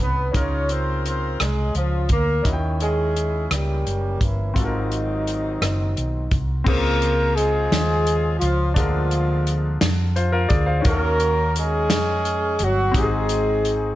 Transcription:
Already playing: B2 C#4 D#4 A4 B4
0.00 C2 B3 B4
0.32 C#2 C#3 C#4 D#4 F4 A#4, kick, closed hi-hat
0.36 C#4 A#4 C#5
0.69 C4 C5, closed hi-hat
1.05 C4 C5, closed hi-hat
1.40 C2 G#3 G#4, cross-stick, closed hi-hat
1.75 C#2 F3 F4, closed hi-hat
2.09 D2 A#3 A#4, kick, closed hi-hat
2.42 D#2 D#3 C#4 E4 D#5, kick, closed hi-hat
2.47 F#4
2.53 G5
2.80 G#3 C#4 E4 G#4, closed hi-hat
3.16 closed hi-hat
3.51 C#2 G3 A#3 C#4 G4, cross-stick, closed hi-hat
3.86 F#1, closed hi-hat
4.21 G1 E3 E4, kick, closed hi-hat
4.54 G#1 G#2 C4 F4 F#4, kick, closed hi-hat
4.59 D#3 F#3 C4 D#4 A4
4.65 A#4
4.91 closed hi-hat
5.27 closed hi-hat
5.61 F#1, cross-stick, closed hi-hat
5.97 B1, closed hi-hat
6.31 C2, kick, closed hi-hat
6.64 C#2 C#3 A#3 C4 F4 G#4 A#4, kick, crash
6.68 F4 C5
7.02 closed hi-hat
7.36 G#3 C4 F4 G#4, closed hi-hat
7.72 D#2, snare, closed hi-hat
8.06 closed hi-hat
8.38 C#2 F3 F4, closed hi-hat
8.74 D2 D3 F3 D4 F4 G#4, kick, closed hi-hat
8.79 G#3 A#3 A#4
9.11 closed hi-hat
9.47 closed hi-hat
9.81 F2, snare, closed hi-hat
10.16 F4 C5, closed hi-hat
10.32 F4 A#4
10.49 D2 G#4 D5, kick, closed hi-hat
10.66 C5 F5
10.80 D#3 C#4 D#4 F#4
10.85 D#2 A#3 F#4 A#4, kick, closed hi-hat
10.89 C#4
11.20 closed hi-hat
11.56 G#3 C#4 G#4, closed hi-hat
11.90 F2, snare, closed hi-hat
12.25 closed hi-hat
12.59 G1, closed hi-hat
12.63 F#3 F#4
12.92 G#1 G#2 C4 D#4 F#4, kick, closed hi-hat
12.96 G#3 C4 D#4 G4 G#4
13.03 G#4
13.29 closed hi-hat
13.65 closed hi-hat

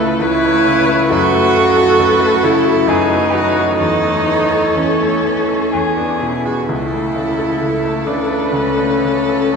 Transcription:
Already playing: C#2 C#3 A3 E4 A4 B4
0.19 C#2 E4 B4 C#5
0.45 A3
0.68 C#3
0.89 E4
1.10 F#2 F#4 A4 B4
1.33 A3
1.55 C#3 A4
1.77 F#4
1.99 F#2 B4
2.20 A3
2.43 C#3 E4 A4
2.65 F#4
2.87 F#2 D#4 G#4 B4
3.10 A3
3.33 F#3 F#4
3.56 F#4
3.79 E2 D#4 A4 C#5
4.03 A3
4.27 E3
4.50 A4
4.75 E2 C#4
4.99 A3
5.25 E3
5.49 A4
5.73 E2 G#4
5.96 B3 D4
6.20 B2 E4
6.46 F#4 G#4
6.69 C#2 E4 A4
6.92 A3
7.16 C#3
7.39 A4
7.62 C#2 A4
7.85 A3
8.07 C#3 D4 B4
8.30 A4
8.52 C#2 C#4
8.77 A3
9.04 C#3
9.29 A4

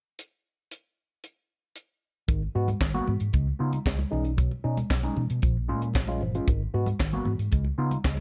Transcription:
0.19 closed hi-hat
0.71 closed hi-hat
1.24 closed hi-hat
1.76 closed hi-hat
2.28 G#1 G#2 D#3, kick, closed hi-hat, muted conga
2.55 G#2 B3 F#4
2.68 closed hi-hat, high conga
2.81 G#1 G#2 D#3, kick, snare, clap, closed hi-hat
2.94 A#3 B3 F#4, muted conga, high conga
3.07 G#2 B3 F#4, high conga, low conga
3.20 G#2, closed hi-hat
3.33 C#2 C#3 G#3, kick, closed hi-hat, muted conga
3.59 C#3 B3 D#4 F4
3.72 D#4 F4, closed hi-hat, high conga
3.86 C#2 C#3 G#3, kick, snare, clap, closed hi-hat
3.99 muted conga, high conga
4.11 B1 G#3 C#4 D#4, low conga
4.24 C#4 D#4, closed hi-hat
4.37 B2 F#3, kick, closed hi-hat, muted conga
4.51 muted conga
4.64 B2 C#4 D#4
4.77 closed hi-hat, high conga
4.90 B1 B2 F#3, kick, snare, clap, closed hi-hat, muted conga
5.03 G#3 C#4 D#4, muted conga, high conga
5.16 B2 C#4 D#4, high conga, low conga
5.30 B2, closed hi-hat
5.42 A#1 A#2 F3, kick, closed hi-hat, muted conga
5.69 A#2 G#3 C#4 F4
5.82 C#4 F4, closed hi-hat, high conga
5.94 A#1, kick, snare, clap, closed hi-hat, muted conga
6.07 G#3 C#4 F4, muted conga, high conga
6.21 G1 A#2 F3, low conga
6.35 G#3 C#4 F4, closed hi-hat
6.48 G#1 G#2 D#3, kick, closed hi-hat, muted conga
6.74 G#2 B3 F#4
6.86 closed hi-hat, high conga
7.00 G#1 G#2 D#3, kick, snare, clap, closed hi-hat, muted conga
7.13 A#3 B3 F#4, muted conga, high conga
7.25 G#2 B3 F#4, high conga, low conga
7.39 G#2, closed hi-hat
7.51 C#2 C#3 G#3, kick, closed hi-hat, muted conga
7.65 muted conga
7.78 C#3 B3 D#4 F4
7.91 D#4 F4, closed hi-hat, high conga
8.04 C#2 C#3 G#3, kick, snare, clap, closed hi-hat
8.17 high conga

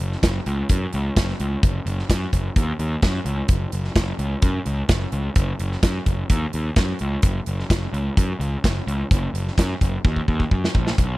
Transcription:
0.00 F#1, closed hi-hat
0.12 snare
0.23 F#1, kick, snare, closed hi-hat
0.46 C#2, closed hi-hat
0.69 F#2, kick, closed hi-hat
0.93 C#2, closed hi-hat
1.16 F#1, kick, snare, closed hi-hat
1.29 snare
1.40 C#2, closed hi-hat
1.63 F#1, kick, closed hi-hat
1.86 F#1, closed hi-hat
1.99 snare
2.10 F#2, kick, snare, closed hi-hat
2.33 F#1, kick, closed hi-hat
2.56 D#2, kick, closed hi-hat
2.79 D#2, closed hi-hat
3.02 F#2, kick, snare, closed hi-hat
3.15 snare
3.25 C#2, closed hi-hat
3.48 F#1, kick, closed hi-hat
3.72 F#1, closed hi-hat
3.84 snare
3.96 F#1, kick, snare, closed hi-hat
4.19 C#2, closed hi-hat
4.42 F#2, kick, closed hi-hat
4.66 C#2, closed hi-hat
4.89 F#1, kick, snare, closed hi-hat
5.12 C#2, closed hi-hat
5.36 F#1, kick, closed hi-hat
5.59 F#1, closed hi-hat
5.72 snare
5.83 F#2, kick, snare, closed hi-hat
6.06 F#1, kick, closed hi-hat
6.30 D#2, kick, closed hi-hat
6.53 D#2, closed hi-hat
6.76 F#2, kick, snare, closed hi-hat
6.99 C#2, closed hi-hat
7.22 F#1, kick, closed hi-hat
7.46 F#1, closed hi-hat
7.59 snare
7.70 F#1, kick, snare, closed hi-hat
7.93 C#2, closed hi-hat
8.17 F#2, kick, closed hi-hat
8.40 C#2, closed hi-hat
8.64 F#1, kick, snare, closed hi-hat
8.87 C#2, closed hi-hat
9.11 F#1, kick, closed hi-hat
9.34 F#1, closed hi-hat
9.48 snare
9.58 F#2, kick, snare, closed hi-hat
9.81 F#1, kick, closed hi-hat
10.05 D#2, kick
10.16 kick
10.28 D#2, kick
10.40 kick
10.51 F#2, kick
10.64 snare
10.75 A#1, kick
10.87 snare
10.98 B1, kick, closed hi-hat

